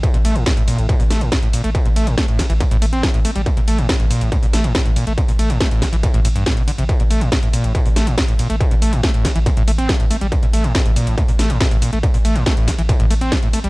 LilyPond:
<<
  \new Staff \with { instrumentName = "Acid bass" } { \clef bass \time 4/4 \key a \phrygian \tempo 4 = 140 a,16 bes,16 a16 a,16 a,16 a,16 bes,16 a,16 a,16 bes,16 a16 a,16 a,16 a,16 bes,16 a16 | bes,16 bes,16 a16 a,16 a16 a,16 a16 e16 bes,16 a,16 a16 c'16 e16 a,16 a16 g16 | a,16 bes,16 a16 a,16 a,16 a,16 bes,16 a,16 a,16 bes,16 a16 a,16 a,16 a,16 bes,16 a16 | bes,16 bes,16 a16 a,16 a16 a,16 a16 e16 bes,16 a,16 a,16 g,16 a,16 c16 d16 c16 |
a,16 bes,16 a16 a,16 a,16 a,16 bes,16 a,16 a,16 bes,16 a16 a,16 a,16 a,16 bes,16 a16 | bes,16 bes,16 a16 a,16 a16 a,16 a16 e16 bes,16 a,16 a16 c'16 e16 a,16 a16 g16 | a,16 bes,16 a16 a,16 a,16 a,16 bes,16 a,16 a,16 bes,16 a16 a,16 a,16 a,16 bes,16 a16 | bes,16 bes,16 a16 a,16 a16 a,16 a16 e16 bes,16 a,16 a16 c'16 e16 a,16 a16 g16 | }
  \new Staff \with { instrumentName = "Sub bass" } { \clef bass \time 4/4 \key a \phrygian r16 a,,16 a,,16 a,,16 r16 a,,16 r16 a,,16 r16 a,,16 a,,16 a,,16 r16 a,,16 r16 a,,16 | r16 a,,16 a,,16 a,,16 r16 a,,16 r16 a,,16 r16 a,,16 a,,16 a,,16 r16 a,,16 r16 a,,16 | r16 a,,16 a,,16 a,,16 r16 a,,16 r16 a,,16 r16 a,,16 a,,16 a,,16 r16 a,,16 r16 a,,16 | r16 a,,16 a,,16 a,,16 r16 a,,16 r16 a,,16 r16 a,,16 a,,16 a,,16 r16 a,,16 r16 a,,16 |
r16 a,,16 a,,16 a,,16 r16 a,,16 r16 a,,16 r16 a,,16 a,,16 a,,16 r16 a,,16 r16 a,,16 | r16 a,,16 a,,16 a,,16 r16 a,,16 r16 a,,16 r16 a,,16 a,,16 a,,16 r16 a,,16 r16 a,,16 | r16 a,,16 a,,16 a,,16 r16 a,,16 r16 a,,16 r16 a,,16 a,,16 a,,16 r16 a,,16 r16 a,,16 | r16 a,,16 a,,16 a,,16 r16 a,,16 r16 a,,16 r16 a,,16 a,,16 a,,16 r16 a,,16 r16 a,,16 | }
  \new DrumStaff \with { instrumentName = "Drums" } \drummode { \time 4/4 <hh bd cymr>16 hh16 <hho cymr>16 hh16 <hh bd cymr sn>16 hh16 <hho cymr>16 hh16 <hh bd cymr>16 hho16 <hho cymr sn>16 hh16 <hh bd cymr sn>16 hh16 <hho cymr>16 hh16 | <hh bd cymr>16 hh16 <hho cymr>16 hh16 <hh bd cymr sn>16 hh16 <hho bd cymr sn>16 hh16 <hh bd cymr>16 hh16 <hho cymr>16 hh16 <hh bd cymr sn>16 hh16 <hho cymr>16 hh16 | <hh bd cymr>16 hh16 <hho cymr>16 hh16 <hh bd cymr sn>16 hh16 <hho cymr>16 hh16 <hh bd cymr>16 hho16 <hho cymr sn>16 hh16 <hh bd cymr sn>16 hh16 <hho cymr>16 hh16 | <hh bd cymr>16 hho16 <hho cymr>16 hh16 <hh bd cymr sn>16 hh16 <hho bd cymr sn>16 hh16 <hh bd cymr>16 hh16 <hho cymr>16 hh16 <hh bd cymr sn>16 hh16 <hho cymr>16 hh16 |
<hh bd cymr>16 hh16 <hho cymr>16 hh16 <hh bd cymr sn>16 hh16 <hho cymr>16 hh16 <hh bd cymr>16 hho16 <hho cymr sn>16 hh16 <hh bd cymr sn>16 hh16 <hho cymr>16 hh16 | <hh bd cymr>16 hh16 <hho cymr>16 hh16 <hh bd cymr sn>16 hh16 <hho bd cymr sn>16 hh16 <hh bd cymr>16 hh16 <hho cymr>16 hh16 <hh bd cymr sn>16 hh16 <hho cymr>16 hh16 | <hh bd cymr>16 hh16 <hho cymr>16 hh16 <hh bd cymr sn>16 hh16 <hho cymr>16 hh16 <hh bd cymr>16 hho16 <hho cymr sn>16 hh16 <hh bd cymr sn>16 hh16 <hho cymr>16 hh16 | <hh bd cymr>16 hho16 <hho cymr>16 hh16 <hh bd cymr sn>16 hh16 <hho bd cymr sn>16 hh16 <hh bd cymr>16 hh16 <hho cymr>16 hh16 <hh bd cymr sn>16 hh16 <hho cymr>16 hh16 | }
>>